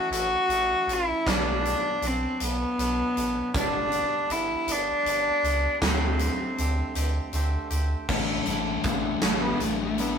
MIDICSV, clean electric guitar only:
0, 0, Header, 1, 2, 480
1, 0, Start_track
1, 0, Tempo, 758534
1, 801, Time_signature, 6, 3, 24, 8
1, 6444, End_track
2, 0, Start_track
2, 0, Title_t, "Clean electric guitar"
2, 0, Program_c, 0, 27
2, 0, Note_on_c, 0, 52, 73
2, 0, Note_on_c, 0, 57, 77
2, 0, Note_on_c, 0, 61, 79
2, 0, Note_on_c, 0, 64, 74
2, 66, Note_off_c, 0, 64, 0
2, 74, Note_on_c, 0, 64, 70
2, 79, Note_off_c, 0, 61, 0
2, 87, Note_on_c, 0, 61, 61
2, 91, Note_off_c, 0, 57, 0
2, 98, Note_on_c, 0, 57, 57
2, 306, Note_off_c, 0, 52, 0
2, 313, Note_off_c, 0, 57, 0
2, 313, Note_on_c, 0, 52, 67
2, 319, Note_off_c, 0, 61, 0
2, 321, Note_on_c, 0, 57, 77
2, 327, Note_on_c, 0, 61, 72
2, 328, Note_off_c, 0, 64, 0
2, 335, Note_on_c, 0, 64, 76
2, 546, Note_off_c, 0, 64, 0
2, 553, Note_on_c, 0, 64, 64
2, 558, Note_off_c, 0, 61, 0
2, 565, Note_on_c, 0, 61, 59
2, 567, Note_off_c, 0, 57, 0
2, 574, Note_on_c, 0, 57, 55
2, 783, Note_off_c, 0, 52, 0
2, 783, Note_off_c, 0, 64, 0
2, 789, Note_off_c, 0, 61, 0
2, 793, Note_off_c, 0, 57, 0
2, 795, Note_on_c, 0, 47, 90
2, 805, Note_on_c, 0, 54, 96
2, 810, Note_on_c, 0, 59, 99
2, 817, Note_on_c, 0, 62, 100
2, 1034, Note_off_c, 0, 62, 0
2, 1037, Note_on_c, 0, 62, 70
2, 1050, Note_off_c, 0, 54, 0
2, 1057, Note_on_c, 0, 54, 57
2, 1278, Note_off_c, 0, 47, 0
2, 1279, Note_off_c, 0, 54, 0
2, 1287, Note_on_c, 0, 54, 77
2, 1296, Note_off_c, 0, 62, 0
2, 1299, Note_on_c, 0, 62, 91
2, 1514, Note_off_c, 0, 62, 0
2, 1516, Note_on_c, 0, 62, 64
2, 1526, Note_off_c, 0, 59, 0
2, 1528, Note_on_c, 0, 59, 60
2, 1529, Note_off_c, 0, 54, 0
2, 1537, Note_on_c, 0, 54, 51
2, 1756, Note_on_c, 0, 47, 73
2, 1757, Note_off_c, 0, 54, 0
2, 1764, Note_off_c, 0, 59, 0
2, 1765, Note_on_c, 0, 54, 76
2, 1771, Note_on_c, 0, 59, 77
2, 1775, Note_off_c, 0, 62, 0
2, 1777, Note_on_c, 0, 62, 80
2, 1995, Note_off_c, 0, 62, 0
2, 1997, Note_on_c, 0, 62, 74
2, 2003, Note_off_c, 0, 59, 0
2, 2010, Note_on_c, 0, 59, 62
2, 2012, Note_off_c, 0, 54, 0
2, 2020, Note_on_c, 0, 54, 55
2, 2225, Note_off_c, 0, 47, 0
2, 2232, Note_off_c, 0, 59, 0
2, 2236, Note_off_c, 0, 54, 0
2, 2240, Note_on_c, 0, 43, 87
2, 2246, Note_on_c, 0, 50, 97
2, 2253, Note_on_c, 0, 55, 91
2, 2257, Note_on_c, 0, 59, 97
2, 2260, Note_off_c, 0, 62, 0
2, 2262, Note_on_c, 0, 62, 104
2, 2483, Note_off_c, 0, 62, 0
2, 2486, Note_on_c, 0, 62, 67
2, 2490, Note_off_c, 0, 59, 0
2, 2498, Note_on_c, 0, 59, 65
2, 2504, Note_off_c, 0, 55, 0
2, 2506, Note_on_c, 0, 55, 57
2, 2721, Note_off_c, 0, 43, 0
2, 2721, Note_off_c, 0, 50, 0
2, 2729, Note_on_c, 0, 50, 70
2, 2735, Note_off_c, 0, 55, 0
2, 2735, Note_off_c, 0, 59, 0
2, 2738, Note_on_c, 0, 55, 72
2, 2743, Note_on_c, 0, 59, 72
2, 2748, Note_off_c, 0, 62, 0
2, 2750, Note_on_c, 0, 62, 79
2, 2962, Note_off_c, 0, 62, 0
2, 2964, Note_on_c, 0, 62, 62
2, 2970, Note_off_c, 0, 59, 0
2, 2978, Note_on_c, 0, 59, 65
2, 2979, Note_off_c, 0, 55, 0
2, 2986, Note_on_c, 0, 55, 59
2, 3206, Note_off_c, 0, 50, 0
2, 3207, Note_off_c, 0, 55, 0
2, 3212, Note_off_c, 0, 59, 0
2, 3214, Note_on_c, 0, 55, 75
2, 3219, Note_on_c, 0, 59, 76
2, 3221, Note_off_c, 0, 62, 0
2, 3224, Note_on_c, 0, 62, 85
2, 3440, Note_off_c, 0, 62, 0
2, 3443, Note_on_c, 0, 62, 73
2, 3447, Note_off_c, 0, 59, 0
2, 3454, Note_on_c, 0, 59, 62
2, 3458, Note_off_c, 0, 55, 0
2, 3465, Note_on_c, 0, 55, 61
2, 3674, Note_off_c, 0, 59, 0
2, 3679, Note_off_c, 0, 55, 0
2, 3685, Note_on_c, 0, 50, 90
2, 3697, Note_on_c, 0, 57, 90
2, 3703, Note_on_c, 0, 60, 104
2, 3707, Note_off_c, 0, 62, 0
2, 3709, Note_on_c, 0, 67, 105
2, 3916, Note_off_c, 0, 67, 0
2, 3923, Note_on_c, 0, 67, 76
2, 3930, Note_off_c, 0, 60, 0
2, 3937, Note_on_c, 0, 60, 72
2, 3938, Note_off_c, 0, 57, 0
2, 3946, Note_on_c, 0, 57, 61
2, 4157, Note_off_c, 0, 50, 0
2, 4165, Note_on_c, 0, 50, 70
2, 4166, Note_off_c, 0, 57, 0
2, 4171, Note_off_c, 0, 60, 0
2, 4173, Note_on_c, 0, 57, 74
2, 4179, Note_off_c, 0, 67, 0
2, 4179, Note_on_c, 0, 60, 84
2, 4187, Note_on_c, 0, 67, 75
2, 4396, Note_off_c, 0, 67, 0
2, 4404, Note_on_c, 0, 67, 72
2, 4408, Note_off_c, 0, 60, 0
2, 4415, Note_off_c, 0, 57, 0
2, 4415, Note_on_c, 0, 60, 61
2, 4422, Note_on_c, 0, 57, 58
2, 4630, Note_off_c, 0, 50, 0
2, 4637, Note_off_c, 0, 57, 0
2, 4638, Note_on_c, 0, 50, 77
2, 4644, Note_on_c, 0, 57, 78
2, 4645, Note_off_c, 0, 60, 0
2, 4651, Note_off_c, 0, 67, 0
2, 4652, Note_on_c, 0, 60, 85
2, 4659, Note_on_c, 0, 67, 83
2, 4867, Note_off_c, 0, 67, 0
2, 4875, Note_on_c, 0, 67, 73
2, 4878, Note_off_c, 0, 60, 0
2, 4886, Note_on_c, 0, 60, 63
2, 4891, Note_off_c, 0, 57, 0
2, 4899, Note_on_c, 0, 57, 60
2, 5104, Note_off_c, 0, 67, 0
2, 5106, Note_off_c, 0, 50, 0
2, 5110, Note_off_c, 0, 60, 0
2, 5116, Note_off_c, 0, 57, 0
2, 5119, Note_on_c, 0, 50, 82
2, 5123, Note_on_c, 0, 57, 88
2, 5126, Note_on_c, 0, 62, 87
2, 5128, Note_on_c, 0, 64, 92
2, 5356, Note_off_c, 0, 64, 0
2, 5358, Note_off_c, 0, 62, 0
2, 5359, Note_off_c, 0, 57, 0
2, 5361, Note_off_c, 0, 50, 0
2, 5363, Note_on_c, 0, 64, 80
2, 5366, Note_on_c, 0, 62, 70
2, 5367, Note_on_c, 0, 57, 68
2, 5373, Note_on_c, 0, 50, 64
2, 5588, Note_off_c, 0, 50, 0
2, 5593, Note_off_c, 0, 57, 0
2, 5594, Note_off_c, 0, 62, 0
2, 5596, Note_on_c, 0, 50, 69
2, 5598, Note_off_c, 0, 64, 0
2, 5601, Note_on_c, 0, 57, 68
2, 5602, Note_on_c, 0, 62, 74
2, 5605, Note_on_c, 0, 64, 73
2, 5833, Note_off_c, 0, 64, 0
2, 5837, Note_off_c, 0, 57, 0
2, 5839, Note_off_c, 0, 62, 0
2, 5840, Note_off_c, 0, 50, 0
2, 5840, Note_on_c, 0, 64, 81
2, 5845, Note_on_c, 0, 57, 78
2, 5846, Note_on_c, 0, 62, 74
2, 5849, Note_on_c, 0, 50, 68
2, 6154, Note_off_c, 0, 64, 0
2, 6156, Note_off_c, 0, 57, 0
2, 6157, Note_off_c, 0, 62, 0
2, 6158, Note_off_c, 0, 50, 0
2, 6324, Note_on_c, 0, 64, 73
2, 6325, Note_on_c, 0, 62, 69
2, 6328, Note_on_c, 0, 57, 63
2, 6331, Note_on_c, 0, 50, 62
2, 6444, Note_off_c, 0, 50, 0
2, 6444, Note_off_c, 0, 57, 0
2, 6444, Note_off_c, 0, 62, 0
2, 6444, Note_off_c, 0, 64, 0
2, 6444, End_track
0, 0, End_of_file